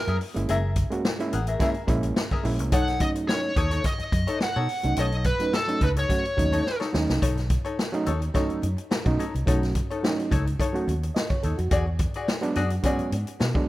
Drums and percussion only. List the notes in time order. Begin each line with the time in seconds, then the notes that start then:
0.07 closed hi-hat
0.21 open hi-hat
0.36 closed hi-hat
0.48 closed hi-hat
0.76 kick, closed hi-hat
0.91 closed hi-hat
1.05 snare
1.20 closed hi-hat
1.33 closed hi-hat
1.47 closed hi-hat
1.60 kick, snare, closed hi-hat
1.74 closed hi-hat
1.88 kick, closed hi-hat
2.03 closed hi-hat
2.16 snare
2.31 kick
2.45 open hi-hat
2.59 closed hi-hat
2.72 kick, closed hi-hat
2.88 snare, closed hi-hat
3.00 kick, closed hi-hat
3.15 closed hi-hat
3.29 snare
3.56 kick, closed hi-hat
3.71 closed hi-hat
3.84 kick, snare, closed hi-hat
3.99 closed hi-hat
4.12 kick, closed hi-hat
4.27 closed hi-hat
4.40 snare
4.69 open hi-hat
4.83 closed hi-hat
4.96 closed hi-hat
5.12 closed hi-hat
5.24 kick, closed hi-hat
5.40 closed hi-hat
5.53 snare
5.68 closed hi-hat
5.81 kick, closed hi-hat
5.96 closed hi-hat
6.10 kick, snare, closed hi-hat
6.25 closed hi-hat
6.38 kick, closed hi-hat
6.53 closed hi-hat
6.66 snare
6.81 snare
6.94 snare
7.09 snare
7.22 kick, closed hi-hat
7.37 snare, closed hi-hat
7.50 kick, closed hi-hat
7.65 closed hi-hat
7.79 snare
7.94 closed hi-hat
8.06 closed hi-hat
8.22 closed hi-hat
8.35 kick, snare, closed hi-hat
8.50 closed hi-hat
8.63 closed hi-hat
8.78 closed hi-hat
8.91 snare
9.06 kick, closed hi-hat
9.20 closed hi-hat
9.35 closed hi-hat
9.47 kick, closed hi-hat
9.63 snare, closed hi-hat
9.75 kick, closed hi-hat
9.91 closed hi-hat
10.04 snare
10.20 closed hi-hat
10.32 kick, closed hi-hat
10.47 closed hi-hat
10.60 kick, closed hi-hat
10.75 closed hi-hat
10.89 closed hi-hat
11.03 closed hi-hat
11.16 snare
11.30 kick, closed hi-hat
11.43 closed hi-hat
11.58 closed hi-hat
11.71 kick, closed hi-hat
11.99 kick, closed hi-hat
12.14 closed hi-hat
12.28 snare
12.43 closed hi-hat
12.55 closed hi-hat
12.70 closed hi-hat
12.83 kick, closed hi-hat
12.99 closed hi-hat
13.12 closed hi-hat
13.27 closed hi-hat
13.40 snare
13.55 kick